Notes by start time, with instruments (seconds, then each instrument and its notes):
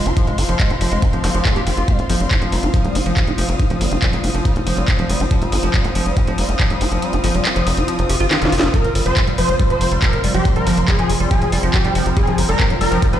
Already playing: string section C4 F4 F5 C6
0.06 analog synth bass F1, acid bass F4, closed hi-hat
0.17 acid bass F3, kick, closed hi-hat
0.27 analog synth bass F1, acid bass G#3, closed hi-hat
0.38 analog synth bass G1, acid bass F4, open hi-hat
0.49 analog synth bass F1, acid bass F3, closed hi-hat
0.60 kick, clap, closed hi-hat
0.70 analog synth bass F1, acid bass F4, closed hi-hat
0.81 analog synth bass F1, acid bass F3, open hi-hat
0.92 analog synth bass F1, acid bass G#3, closed hi-hat
1.02 acid bass F4, kick, closed hi-hat
1.13 analog synth bass F1, acid bass F3, closed hi-hat
1.24 analog synth bass F1, acid bass F3, open hi-hat, zap
1.35 analog synth bass F1, acid bass F3, closed hi-hat
1.45 acid bass G#3, kick, clap, closed hi-hat
1.56 analog synth bass F1, acid bass G4, closed hi-hat
1.67 analog synth bass F1, acid bass D#3, open hi-hat
1.77 analog synth bass F1, acid bass F4, closed hi-hat
1.88 acid bass G3, kick, closed hi-hat
1.99 analog synth bass F1, acid bass F4, closed hi-hat
2.10 analog synth bass G1, acid bass F3, open hi-hat
2.20 analog synth bass F1, acid bass G3, closed hi-hat
2.31 acid bass F4, kick, clap, closed hi-hat
2.42 analog synth bass F1, acid bass F3, closed hi-hat
2.52 analog synth bass F1, acid bass G3, open hi-hat
2.63 analog synth bass F1, acid bass F4, closed hi-hat
2.74 acid bass F3, string section D#6, kick, closed hi-hat
2.85 analog synth bass F1, acid bass G3, closed hi-hat
2.95 analog synth bass F1, acid bass F4, open hi-hat
3.06 analog synth bass F1, acid bass F3, closed hi-hat
3.17 acid bass G3, kick, clap, closed hi-hat
3.27 analog synth bass F1, acid bass F4, closed hi-hat
3.38 analog synth bass F1, acid bass F3, open hi-hat
3.49 analog synth bass F1, acid bass G3, closed hi-hat
3.60 acid bass F4, kick, closed hi-hat
3.70 analog synth bass F1, acid bass F3, closed hi-hat
3.81 analog synth bass G1, acid bass G3, open hi-hat
3.92 analog synth bass F1, acid bass F4, closed hi-hat
4.02 acid bass F3, kick, clap, closed hi-hat
4.13 analog synth bass F1, acid bass G3, closed hi-hat
4.24 analog synth bass F1, acid bass F4, open hi-hat
4.35 analog synth bass F1, acid bass F3, closed hi-hat
4.45 acid bass G3, kick, closed hi-hat
4.56 analog synth bass F1, acid bass F4, closed hi-hat
4.67 analog synth bass F1, acid bass F3, open hi-hat
4.77 analog synth bass F1, acid bass G3, closed hi-hat
4.88 acid bass F4, kick, clap, closed hi-hat
4.99 analog synth bass F1, acid bass F3, closed hi-hat
5.09 analog synth bass F1, acid bass G3, open hi-hat
5.20 analog synth bass F1, acid bass F4, closed hi-hat
5.31 acid bass F3, kick, closed hi-hat
5.42 analog synth bass F1, acid bass G3, closed hi-hat
5.52 analog synth bass G1, acid bass F4, open hi-hat
5.63 analog synth bass F1, acid bass F3, closed hi-hat
5.74 acid bass G3, kick, clap, closed hi-hat
5.85 analog synth bass F1, acid bass F4, closed hi-hat
5.95 analog synth bass F1, acid bass F3, open hi-hat
6.06 analog synth bass F1, acid bass G3, closed hi-hat
6.17 acid bass F4, kick, closed hi-hat
6.27 analog synth bass F1, acid bass F3, closed hi-hat
6.38 analog synth bass F1, acid bass G3, open hi-hat
6.49 analog synth bass F1, acid bass F4, closed hi-hat
6.59 acid bass F3, kick, clap, closed hi-hat
6.70 analog synth bass F1, acid bass G3, closed hi-hat
6.81 analog synth bass F1, acid bass F4, open hi-hat
6.92 analog synth bass F1, acid bass F3, closed hi-hat
7.02 acid bass G3, closed hi-hat
7.13 analog synth bass F1, acid bass F4, closed hi-hat
7.24 analog synth bass G1, acid bass F3, open hi-hat
7.35 analog synth bass F1, acid bass G3, closed hi-hat
7.45 acid bass F4, clap, closed hi-hat
7.56 analog synth bass F1, acid bass F3, closed hi-hat
7.67 analog synth bass F1, acid bass G3, open hi-hat
7.77 analog synth bass F1, acid bass F4, closed hi-hat
7.88 acid bass F3, closed hi-hat, swell
7.99 analog synth bass F1, acid bass G3, closed hi-hat
8.10 analog synth bass F1, acid bass G4, open hi-hat
8.20 analog synth bass G1, acid bass F4, closed hi-hat
8.31 acid bass D#3, snare, clap, closed hi-hat
8.42 analog synth bass F1, acid bass D#3, snare, closed hi-hat
8.52 analog synth bass F1, acid bass F4, open hi-hat
8.60 analog synth bass F1, acid bass G3, snare, closed hi-hat
8.74 synth texture F3, acid bass F3, digital synth lead A#4, kick, closed hi-hat
8.85 analog synth bass F1, acid bass G3, closed hi-hat
8.95 analog synth bass G1, acid bass G3, open hi-hat
9.06 analog synth bass F1, acid bass F3, digital synth lead C5, closed hi-hat
9.17 acid bass G3, kick, clap, closed hi-hat
9.27 analog synth bass F1, acid bass G3, closed hi-hat
9.38 analog synth bass F1, acid bass F3, digital synth lead C5, open hi-hat
9.49 analog synth bass F1, acid bass G3, closed hi-hat
9.60 acid bass G3, string section C6, kick, closed hi-hat
9.70 analog synth bass F1, acid bass F3, digital synth lead C5, closed hi-hat
9.81 analog synth bass F1, acid bass G3, open hi-hat
9.92 analog synth bass F1, acid bass G3, closed hi-hat
10.02 acid bass F3, digital synth lead A#4, kick, clap, closed hi-hat
10.13 analog synth bass F1, acid bass G3, closed hi-hat
10.24 analog synth bass F1, acid bass G3, open hi-hat
10.34 analog synth bass F1, acid bass F3, digital synth lead G4, closed hi-hat
10.45 acid bass G3, kick, closed hi-hat
10.56 analog synth bass F1, acid bass G3, digital synth lead A#4, closed hi-hat
10.67 analog synth bass G1, acid bass F3, open hi-hat
10.77 analog synth bass F1, acid bass G3, closed hi-hat
10.88 acid bass G3, digital synth lead G#4, kick, clap, closed hi-hat
10.99 analog synth bass F1, acid bass F3, closed hi-hat
11.10 analog synth bass F1, acid bass G3, string section G5, open hi-hat
11.20 analog synth bass F1, acid bass G3, closed hi-hat
11.31 acid bass F3, digital synth lead G#4, kick, closed hi-hat
11.42 analog synth bass F1, acid bass G3, closed hi-hat
11.52 analog synth bass F1, acid bass G3, open hi-hat
11.63 analog synth bass F1, acid bass F3, closed hi-hat
11.74 acid bass G3, digital synth lead G4, kick, clap, closed hi-hat
11.85 analog synth bass F1, acid bass G3, closed hi-hat
11.93 analog synth bass F1, acid bass F3, string section A#5, open hi-hat
12.06 analog synth bass F1, acid bass G3, closed hi-hat
12.17 acid bass G3, digital synth lead G#4, kick, closed hi-hat
12.27 analog synth bass F1, acid bass F3, closed hi-hat
12.38 analog synth bass G1, acid bass G3, open hi-hat
12.49 analog synth bass F1, acid bass G3, digital synth lead A#4, closed hi-hat
12.60 acid bass F3, kick, clap, closed hi-hat
12.70 analog synth bass F1, acid bass G3, closed hi-hat
12.81 analog synth bass F1, acid bass G3, digital synth lead A#4, open hi-hat
12.92 analog synth bass F1, acid bass F3, closed hi-hat
13.02 acid bass G3, kick, closed hi-hat
13.13 analog synth bass F1, acid bass G3, digital synth lead C5, closed hi-hat